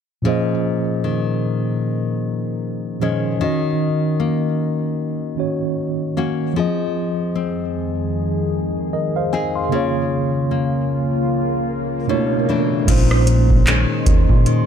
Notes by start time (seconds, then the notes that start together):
0.22 A#2 F3 C#4 G#4
0.27 C5 D#5
1.04 D#3
3.00 A#2 D#3 F3 G#3 C#4 G#4 C5 D#5
3.38 D#3 C#4
3.42 F#4 D#5
4.20 A#3
5.37 D#3 C#4 F#4 C#5
6.17 A#3 C#4 F#4
6.53 F2 D#3 F3 C4 G#4
6.58 G#4 D#5
7.35 C4
8.93 A#4 D#5
9.16 C5 F5
9.33 C4 D#4 G#4 D#5 G#5
9.56 F5 C6
9.69 C#3 A#3 F4, swell
9.73 F4 C#5
10.51 A#3
12.07 B2 A3 D4 E4 C#5
12.49 E3 A3 D4
12.85 A#1 A#2 G#3 C#4 G#4 D#5 C6, kick, closed hi-hat, crash
12.90 D#4 C5
13.11 cross-stick
13.27 closed hi-hat
13.50 kick
13.67 D#3 G#3 C#4, clap, closed hi-hat
14.06 D#2, kick, closed hi-hat
14.29 A#2, kick
14.46 D#3, closed hi-hat